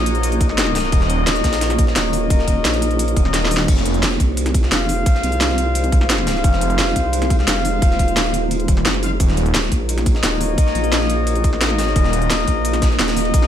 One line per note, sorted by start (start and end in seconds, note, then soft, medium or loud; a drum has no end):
0.00 0.91 A#1 loud
0.00 3.64 A#3 medium
0.00 0.47 D#4 medium
0.00 3.64 D#4 medium
0.00 3.64 F#4 medium
0.00 0.47 A#4 medium
0.00 3.64 C#5 medium
0.00 0.47 D#5 loud
0.06 closed hi-hat medium
0.06 ride medium
0.15 closed hi-hat soft
0.23 closed hi-hat medium
0.23 ride medium
0.32 closed hi-hat soft
0.32 ride soft
0.41 kick loud
0.41 closed hi-hat medium
0.41 ride medium
0.49 1.85 D#4 medium
0.49 1.85 A#4 medium
0.49 1.85 D#5 loud
0.49 snare soft
0.58 snare loud
0.58 closed hi-hat loud
0.58 ride medium
0.67 snare soft
0.67 ride soft
0.75 snare loud
0.75 open hi-hat medium
0.75 ride medium
0.84 snare soft
0.92 1.26 D#1 loud
0.92 kick loud
0.92 closed hi-hat medium
0.92 ride medium
1.01 snare medium
1.10 closed hi-hat medium
1.10 ride medium
1.27 1.43 D#1 loud
1.27 snare loud
1.27 closed hi-hat loud
1.27 ride medium
1.35 snare soft
1.35 closed hi-hat soft
1.44 1.94 A#1 loud
1.44 kick medium
1.44 snare loud
1.44 closed hi-hat medium
1.44 ride medium
1.53 snare loud
1.53 closed hi-hat soft
1.53 ride medium
1.61 snare loud
1.61 closed hi-hat loud
1.61 ride medium
1.70 snare soft
1.70 closed hi-hat soft
1.79 kick loud
1.79 closed hi-hat medium
1.79 ride medium
1.87 3.23 D#4 medium
1.87 3.23 A#4 medium
1.87 3.23 D#5 medium
1.87 snare medium
1.96 2.29 D#1 loud
1.96 snare loud
1.96 closed hi-hat loud
1.96 ride medium
2.13 open hi-hat medium
2.13 ride medium
2.30 2.63 D#1 loud
2.30 kick loud
2.30 closed hi-hat loud
2.30 ride medium
2.39 snare soft
2.48 kick medium
2.48 closed hi-hat medium
2.48 ride medium
2.65 3.15 A#1 loud
2.65 snare loud
2.65 closed hi-hat loud
2.65 ride medium
2.73 snare soft
2.73 closed hi-hat soft
2.82 closed hi-hat medium
2.82 ride medium
2.91 closed hi-hat soft
2.99 closed hi-hat loud
2.99 ride medium
3.08 closed hi-hat soft
3.08 ride soft
3.16 3.67 D#1 loud
3.16 kick loud
3.16 closed hi-hat medium
3.16 ride medium
3.25 3.67 D#4 medium
3.25 3.67 A#4 medium
3.25 3.67 D#5 medium
3.25 snare soft
3.34 snare loud
3.34 snare medium
3.34 closed hi-hat loud
3.34 ride medium
3.42 snare medium
3.42 ride soft
3.51 open hi-hat medium
3.51 ride medium
3.57 snare loud
3.68 4.01 F1 loud
3.68 9.16 G#3 medium
3.68 9.16 D#4 medium
3.68 9.16 F4 medium
3.68 9.16 C5 medium
3.68 kick loud
3.68 closed hi-hat medium
3.68 crash loud
3.68 ride medium
3.77 snare medium
3.85 closed hi-hat medium
3.85 ride medium
3.94 closed hi-hat soft
4.03 4.19 F1 loud
4.03 snare loud
4.03 closed hi-hat loud
4.03 ride medium
4.11 snare soft
4.20 4.70 C2 loud
4.20 kick medium
4.20 closed hi-hat medium
4.20 ride medium
4.37 closed hi-hat loud
4.37 ride medium
4.46 snare soft
4.46 closed hi-hat soft
4.54 kick loud
4.54 closed hi-hat medium
4.54 ride medium
4.63 5.99 F4 medium
4.63 5.99 C5 medium
4.63 5.99 F5 loud
4.63 snare medium
4.72 5.05 F1 loud
4.72 snare loud
4.72 closed hi-hat loud
4.72 ride medium
4.89 open hi-hat medium
4.89 ride medium
5.06 kick loud
5.06 closed hi-hat medium
5.06 ride medium
5.15 snare soft
5.23 6.43 C2 medium
5.23 closed hi-hat medium
5.23 ride medium
5.32 closed hi-hat soft
5.41 snare loud
5.41 closed hi-hat loud
5.41 ride medium
5.49 snare soft
5.58 closed hi-hat medium
5.58 ride medium
5.75 closed hi-hat medium
5.75 ride loud
5.84 closed hi-hat soft
5.84 ride soft
5.92 kick loud
5.92 closed hi-hat medium
5.92 ride medium
6.01 7.37 F4 medium
6.01 7.37 C5 medium
6.01 7.37 F5 loud
6.01 snare soft
6.10 snare loud
6.10 closed hi-hat medium
6.10 ride medium
6.18 snare soft
6.18 ride soft
6.27 snare loud
6.27 open hi-hat medium
6.27 ride medium
6.36 snare soft
6.44 6.77 F1 loud
6.44 kick loud
6.44 closed hi-hat medium
6.44 ride medium
6.53 snare medium
6.61 closed hi-hat medium
6.61 ride medium
6.70 closed hi-hat soft
6.79 6.94 F1 loud
6.79 snare loud
6.79 closed hi-hat medium
6.79 ride loud
6.87 snare soft
6.96 7.46 C2 medium
6.96 kick medium
6.96 closed hi-hat medium
6.96 ride medium
7.13 closed hi-hat medium
7.13 ride medium
7.22 snare soft
7.22 closed hi-hat soft
7.30 kick loud
7.30 closed hi-hat medium
7.30 ride medium
7.39 8.75 F4 medium
7.39 8.75 C5 medium
7.39 8.75 F5 loud
7.39 snare medium
7.48 7.81 F1 loud
7.48 snare loud
7.48 closed hi-hat medium
7.48 ride medium
7.65 open hi-hat medium
7.65 ride medium
7.82 8.67 D#1 medium
7.82 kick loud
7.82 closed hi-hat medium
7.82 ride loud
7.91 snare soft
7.99 kick medium
7.99 closed hi-hat medium
7.99 ride medium
8.08 closed hi-hat soft
8.17 snare loud
8.17 closed hi-hat medium
8.17 ride medium
8.25 snare soft
8.34 closed hi-hat medium
8.34 ride medium
8.51 closed hi-hat medium
8.51 ride medium
8.60 closed hi-hat soft
8.60 ride soft
8.68 8.84 D#1 loud
8.68 kick loud
8.68 closed hi-hat medium
8.68 ride medium
8.77 snare soft
8.85 9.19 F#1 loud
8.85 snare loud
8.85 closed hi-hat medium
8.85 ride medium
8.94 snare soft
8.94 ride soft
9.03 9.10 F4 medium
9.03 9.10 C5 medium
9.03 9.10 F5 loud
9.03 open hi-hat medium
9.03 ride medium
9.20 9.53 D#1 loud
9.20 13.47 A#3 medium
9.20 13.47 D#4 medium
9.20 13.47 F#4 medium
9.20 11.93 C#5 medium
9.20 kick loud
9.20 closed hi-hat medium
9.20 ride medium
9.29 snare medium
9.37 closed hi-hat medium
9.37 ride medium
9.46 closed hi-hat soft
9.54 9.70 D#1 loud
9.54 snare loud
9.54 closed hi-hat medium
9.54 ride medium
9.63 snare soft
9.72 10.22 A#1 loud
9.72 kick medium
9.72 closed hi-hat medium
9.72 ride medium
9.89 closed hi-hat medium
9.89 ride medium
9.98 snare soft
9.98 closed hi-hat soft
10.06 kick loud
10.06 closed hi-hat medium
10.06 ride medium
10.15 11.51 D#4 medium
10.15 11.51 A#4 medium
10.15 11.51 D#5 medium
10.15 snare medium
10.23 10.57 D#1 loud
10.23 snare loud
10.23 closed hi-hat medium
10.23 ride medium
10.41 open hi-hat medium
10.41 ride medium
10.58 kick loud
10.58 closed hi-hat medium
10.58 ride medium
10.67 snare soft
10.75 11.59 A#1 loud
10.75 closed hi-hat medium
10.75 ride medium
10.84 closed hi-hat soft
10.92 snare loud
10.92 closed hi-hat loud
10.92 ride medium
11.01 snare soft
11.10 closed hi-hat medium
11.10 ride medium
11.27 closed hi-hat medium
11.27 ride medium
11.35 closed hi-hat soft
11.35 ride soft
11.44 kick loud
11.44 closed hi-hat medium
11.44 ride medium
11.53 12.89 D#4 medium
11.53 12.89 A#4 medium
11.53 12.89 D#5 loud
11.53 snare soft
11.59 11.83 A1 loud
11.59 snare loud
11.59 closed hi-hat medium
11.59 ride medium
11.70 snare soft
11.70 ride soft
11.79 snare loud
11.79 open hi-hat medium
11.79 ride medium
11.83 11.94 G#1 loud
11.87 snare soft
11.96 12.29 D#1 loud
11.96 13.47 D#5 medium
11.96 kick loud
11.96 closed hi-hat loud
11.96 ride medium
12.04 snare medium
12.13 closed hi-hat medium
12.13 ride medium
12.22 closed hi-hat soft
12.30 12.46 D#1 loud
12.30 snare loud
12.30 closed hi-hat loud
12.30 ride medium
12.39 snare soft
12.48 12.98 A#1 loud
12.48 kick medium
12.48 closed hi-hat medium
12.48 ride medium
12.65 closed hi-hat loud
12.65 ride medium
12.73 snare soft
12.73 closed hi-hat soft
12.82 kick loud
12.82 snare loud
12.82 closed hi-hat medium
12.82 ride medium
12.91 13.47 D#4 medium
12.91 13.47 A#4 medium
12.91 13.47 D#5 loud
12.91 snare soft
12.99 13.32 D#1 loud
12.99 snare loud
12.99 closed hi-hat loud
12.99 ride medium
13.08 snare loud
13.08 ride medium
13.17 snare soft
13.17 open hi-hat medium
13.25 ride medium
13.34 13.47 A#1 loud
13.34 kick loud
13.34 closed hi-hat medium
13.34 ride medium
13.42 snare soft